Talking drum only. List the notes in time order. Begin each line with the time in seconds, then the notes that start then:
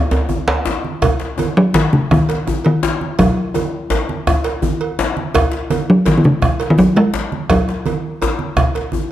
1.57 F#3
1.75 D#3
1.93 C#3
2.12 D#3
2.66 D#3
3.19 F#3
5.90 F#3
6.08 D#3
6.18 D#3
6.25 C#3
6.70 D#3
6.79 F#3
6.97 G#3
7.51 F#3